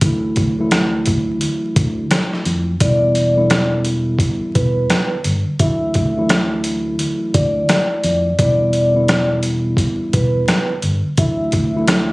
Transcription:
0.01 1.37 D2 loud
0.01 0.54 D3 medium
0.01 0.54 E3 medium
0.01 0.54 F#3 medium
0.01 0.54 A3 medium
0.01 0.55 E4 loud
0.01 kick loud
0.01 closed hi-hat loud
0.36 kick loud
0.36 closed hi-hat medium
0.59 2.67 D3 medium
0.59 2.67 E3 medium
0.59 2.67 F#3 medium
0.59 2.68 A3 medium
0.59 2.68 E4 loud
0.71 cross-stick medium
0.71 snare loud
0.71 closed hi-hat medium
1.06 kick medium
1.06 closed hi-hat medium
1.41 closed hi-hat medium
1.76 2.03 D2 loud
1.76 kick loud
1.76 closed hi-hat medium
2.11 cross-stick medium
2.11 snare loud
2.11 closed hi-hat medium
2.33 snare soft
2.45 2.73 F2 medium
2.45 closed hi-hat medium
2.80 4.16 E1 loud
2.80 3.33 D3 loud
2.80 3.33 E3 medium
2.80 3.33 G3 medium
2.80 3.33 B3 medium
2.80 3.34 E4 loud
2.80 3.69 D5 medium
2.80 kick loud
2.80 closed hi-hat loud
3.15 closed hi-hat medium
3.35 5.12 D3 loud
3.35 5.13 E3 medium
3.35 5.13 G3 medium
3.35 5.13 B3 medium
3.35 5.13 E4 loud
3.50 cross-stick medium
3.50 snare loud
3.50 closed hi-hat medium
3.85 closed hi-hat medium
4.19 kick loud
4.19 closed hi-hat medium
4.55 4.83 E1 medium
4.55 5.08 B4 medium
4.55 kick loud
4.55 closed hi-hat medium
4.90 cross-stick medium
4.90 snare loud
4.90 closed hi-hat medium
5.24 5.42 G1 medium
5.24 closed hi-hat medium
5.59 6.95 D2 loud
5.59 6.12 D3 medium
5.59 6.12 E3 medium
5.59 6.12 F#3 medium
5.59 6.12 A3 medium
5.59 6.13 E4 loud
5.59 6.48 E5 loud
5.59 kick loud
5.59 closed hi-hat loud
5.94 kick loud
5.94 closed hi-hat medium
6.17 8.25 D3 loud
6.17 8.25 E3 medium
6.17 8.26 F#3 medium
6.17 8.26 A3 medium
6.17 8.26 E4 loud
6.29 cross-stick medium
6.29 snare loud
6.29 closed hi-hat medium
6.64 closed hi-hat medium
6.99 closed hi-hat medium
7.34 7.62 D2 loud
7.34 8.35 D5 medium
7.34 kick loud
7.34 closed hi-hat medium
7.69 cross-stick medium
7.69 snare loud
7.69 closed hi-hat medium
8.04 8.31 F2 medium
8.04 closed hi-hat medium
8.39 9.75 E1 loud
8.39 8.91 D3 loud
8.39 8.91 E3 medium
8.39 8.91 G3 medium
8.39 8.91 B3 medium
8.39 8.92 E4 loud
8.39 9.27 D5 loud
8.39 kick loud
8.39 closed hi-hat loud
8.73 closed hi-hat medium
8.94 10.71 D3 medium
8.94 10.71 E3 medium
8.94 10.71 G3 medium
8.94 10.71 B3 medium
8.94 10.72 E4 loud
9.08 cross-stick medium
9.08 snare loud
9.08 closed hi-hat medium
9.43 closed hi-hat medium
9.77 kick loud
9.77 closed hi-hat medium
10.13 10.41 E1 loud
10.13 10.67 B4 medium
10.13 kick loud
10.13 closed hi-hat medium
10.48 cross-stick medium
10.48 snare loud
10.48 closed hi-hat medium
10.82 11.00 G1 medium
10.82 closed hi-hat medium
11.17 12.13 D2 loud
11.17 11.70 D3 medium
11.17 11.70 E3 medium
11.17 11.70 F#3 medium
11.17 11.71 A3 medium
11.17 11.71 E4 loud
11.17 12.06 E5 loud
11.17 kick loud
11.17 closed hi-hat loud
11.52 kick loud
11.52 closed hi-hat medium
11.75 12.13 D3 loud
11.75 12.13 E3 medium
11.75 12.13 F#3 medium
11.75 12.13 A3 medium
11.75 12.13 E4 loud
11.88 cross-stick medium
11.88 snare loud
11.88 closed hi-hat medium

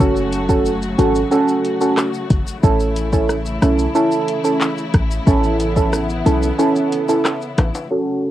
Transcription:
0.00 0.95 F#1 loud
0.00 2.59 C#3 medium
0.00 2.60 F#3 medium
0.00 5.23 A3 medium
0.00 0.45 C#4 loud
0.00 0.45 F#4 medium
0.00 2.59 F#4 medium
0.00 0.45 A4 loud
0.00 kick loud
0.00 shaker medium
0.16 shaker soft
0.16 shaker medium
0.32 closed hi-hat medium
0.32 shaker soft
0.32 shaker medium
0.49 0.71 C#4 medium
0.49 0.71 F#4 medium
0.49 0.71 A4 medium
0.49 kick loud
0.49 shaker medium
0.66 shaker medium
0.82 shaker medium
0.98 1.24 G#1 loud
0.98 1.20 C#4 medium
0.98 1.20 F#4 medium
0.98 1.20 A4 medium
0.98 closed hi-hat medium
0.98 shaker medium
0.98 shaker soft
1.15 shaker medium
1.31 1.77 C#4 loud
1.31 1.77 F#4 medium
1.31 1.77 A4 loud
1.31 shaker medium
1.48 shaker medium
1.48 shaker soft
1.65 closed hi-hat medium
1.65 shaker medium
1.81 2.03 C#4 medium
1.81 2.03 F#4 medium
1.81 2.03 A4 medium
1.81 shaker medium
1.97 cross-stick loud
1.97 clap medium
1.97 shaker medium
2.14 shaker soft
2.30 2.43 F#1 loud
2.30 kick loud
2.30 closed hi-hat medium
2.30 shaker medium
2.47 shaker medium
2.63 3.58 A1 loud
2.63 7.87 C#3 medium
2.63 7.87 E3 medium
2.63 3.09 C#4 medium
2.63 7.87 E4 medium
2.63 3.09 E4 medium
2.63 3.09 A4 loud
2.63 kick loud
2.63 shaker medium
2.80 shaker soft
2.80 shaker medium
2.96 closed hi-hat medium
2.96 shaker soft
2.96 shaker medium
3.13 3.34 C#4 medium
3.13 3.35 E4 medium
3.13 3.35 A4 medium
3.13 kick loud
3.13 shaker medium
3.29 cross-stick medium
3.29 shaker medium
3.46 shaker medium
3.62 3.88 B1 medium
3.62 3.84 C#4 medium
3.62 3.84 E4 medium
3.62 3.84 A4 medium
3.62 cross-stick loud
3.62 closed hi-hat medium
3.62 shaker soft
3.62 shaker medium
3.79 shaker medium
3.95 4.41 C#4 medium
3.95 4.41 E4 medium
3.95 4.41 A4 loud
3.95 shaker medium
4.12 shaker medium
4.12 shaker soft
4.29 closed hi-hat medium
4.29 shaker medium
4.44 4.66 C#4 medium
4.44 4.66 E4 medium
4.44 4.67 A4 medium
4.44 shaker medium
4.61 clap loud
4.61 shaker medium
4.78 shaker soft
4.94 5.19 A1 loud
4.94 kick loud
4.94 cross-stick loud
4.94 closed hi-hat medium
4.94 shaker medium
5.11 shaker medium
5.27 6.22 A1 loud
5.27 7.88 B3 medium
5.27 5.72 C#4 loud
5.27 5.73 E4 medium
5.27 5.73 A4 loud
5.27 kick loud
5.27 shaker medium
5.44 shaker soft
5.44 shaker medium
5.60 closed hi-hat medium
5.60 shaker medium
5.60 shaker soft
5.76 5.98 C#4 medium
5.76 5.98 E4 medium
5.76 5.98 A4 medium
5.76 kick loud
5.76 shaker medium
5.93 cross-stick loud
5.93 shaker medium
6.09 shaker medium
6.26 6.51 B1 medium
6.26 6.48 C#4 medium
6.26 6.48 E4 medium
6.26 6.48 A4 medium
6.26 closed hi-hat medium
6.26 shaker medium
6.43 shaker medium
6.58 7.04 C#4 loud
6.58 7.04 E4 medium
6.58 7.05 A4 loud
6.58 shaker medium
6.76 shaker medium
6.76 shaker soft
6.92 closed hi-hat medium
6.92 shaker medium
7.08 7.30 C#4 medium
7.08 7.30 E4 medium
7.08 7.30 A4 medium
7.08 shaker medium
7.25 cross-stick loud
7.25 clap medium
7.25 shaker medium
7.41 shaker soft
7.58 7.71 A1 medium
7.58 cross-stick loud
7.58 closed hi-hat medium
7.58 high timbale medium
7.58 shaker medium
7.75 high timbale medium
7.75 shaker medium
7.91 8.31 C#3 medium
7.91 8.31 F#3 medium
7.91 8.31 A3 medium
7.91 8.31 C#4 medium
7.91 8.31 F#4 medium
7.91 8.31 A4 loud

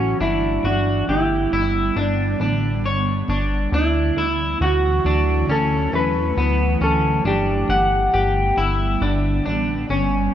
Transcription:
0.00 0.15 A1 medium
0.00 0.17 E3 medium
0.00 0.17 F#3 medium
0.00 0.17 A3 medium
0.00 0.20 C#4 medium
0.00 0.17 E4 medium
0.00 0.21 F#4 medium
0.20 0.59 G1 loud
0.20 10.34 D3 medium
0.20 3.70 G3 medium
0.20 3.70 B3 medium
0.20 0.64 D4 medium
0.20 0.66 E4 medium
0.64 1.03 G1 medium
0.64 1.10 D4 medium
0.64 1.08 F#4 medium
1.08 1.47 G1 medium
1.08 1.99 E4 medium
1.08 1.53 G4 medium
1.52 1.91 G1 medium
1.52 1.97 E4 medium
1.96 2.35 G1 medium
1.96 2.40 D4 medium
1.96 3.26 D4 medium
2.40 2.86 A1 medium
2.40 2.85 D4 medium
2.84 3.23 G1 medium
2.84 3.29 C#5 medium
3.28 3.67 G1 medium
3.28 3.73 D4 medium
3.72 4.11 D2 loud
3.72 7.22 E3 medium
3.72 7.22 F#3 medium
3.72 7.22 A3 medium
3.72 4.18 D4 medium
3.72 7.22 E4 medium
3.72 4.65 E4 medium
4.17 4.56 D2 medium
4.17 4.61 E4 medium
4.61 5.00 D2 medium
4.61 5.06 F#4 medium
4.61 5.51 F#4 medium
5.05 5.44 D2 medium
5.05 5.49 D4 medium
5.49 5.88 D2 loud
5.49 5.92 C#4 medium
5.49 5.95 A4 medium
5.93 6.32 E2 medium
5.93 6.37 C#4 medium
5.93 6.83 B4 loud
6.37 6.76 D2 medium
6.37 6.81 B3 medium
6.81 7.20 D2 medium
6.81 7.25 C#4 medium
6.81 7.27 A4 medium
7.25 7.64 G1 loud
7.25 10.34 G3 medium
7.25 10.34 B3 medium
7.25 7.70 D4 medium
7.25 9.87 G4 medium
7.69 8.08 G1 medium
7.69 8.14 F#5 medium
8.13 8.53 G1 medium
8.13 8.58 G4 medium
8.57 8.97 G1 medium
8.57 9.02 E4 medium
9.01 9.41 G1 loud
9.01 9.44 D4 medium
9.46 9.85 A1 medium
9.46 9.90 D4 medium
9.90 10.29 G1 medium
9.90 10.34 C#4 medium

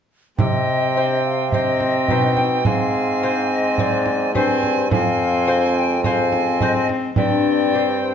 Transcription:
0.38 2.10 C3 medium
0.38 2.05 C3 medium
0.38 1.49 C4 medium
0.38 1.21 D#5 medium
0.38 1.48 G5 medium
0.38 frame drum medium
0.97 1.49 C4 soft
0.97 1.49 C5 soft
1.24 1.54 F5 medium
1.52 2.63 C4 medium
1.52 2.06 C4 soft
1.52 2.06 C5 soft
1.52 2.36 D#5 medium
1.52 2.67 G5 medium
1.52 frame drum soft
1.81 frame drum soft
2.08 2.65 B2 medium
2.08 2.62 B2 medium
2.08 2.62 D#4 soft
2.08 2.62 C5 soft
2.08 frame drum soft
2.36 2.43 G5 medium
2.36 frame drum soft
2.65 4.31 G#2 medium
2.65 4.36 G#2 medium
2.65 4.31 C4 medium
2.65 3.48 F5 medium
2.65 4.34 G#5 medium
2.65 frame drum medium
3.23 3.75 G#3 soft
3.23 3.75 C4 medium
3.23 3.75 C5 medium
3.51 3.78 D#5 medium
3.78 4.31 G#3 soft
3.78 4.31 C4 soft
3.78 4.31 C5 medium
3.78 4.34 D5 medium
3.78 frame drum medium
4.06 frame drum soft
4.34 4.93 G2 medium
4.34 4.87 G2 medium
4.34 4.90 C4 medium
4.34 4.88 C4 medium
4.34 4.87 G#4 soft
4.34 4.90 C5 medium
4.34 4.88 C5 soft
4.34 4.90 G#5 medium
4.34 frame drum soft
4.63 frame drum soft
4.91 6.85 F2 medium
4.91 6.89 F2 medium
4.91 6.02 C4 medium
4.91 5.74 F5 medium
4.91 6.02 G#5 medium
4.91 frame drum medium
5.47 6.00 G#3 soft
5.47 6.00 C4 medium
5.47 6.00 C5 medium
5.76 6.04 G5 medium
6.04 6.57 G#3 medium
6.04 7.15 C4 medium
6.04 6.57 C4 medium
6.04 6.57 C5 medium
6.04 6.62 F5 medium
6.04 6.87 G#5 medium
6.04 frame drum soft
6.32 frame drum medium
6.61 7.13 G#3 soft
6.61 7.14 C4 soft
6.61 7.14 C5 medium
6.61 6.97 D#5 medium
6.61 frame drum soft
6.89 frame drum soft
7.16 8.14 G2 medium
7.16 8.14 C4 medium
7.16 7.98 D5 medium
7.16 8.14 G5 medium
7.16 frame drum medium
7.75 8.14 C4 soft
7.75 8.14 G4 soft
8.01 8.14 C5 medium

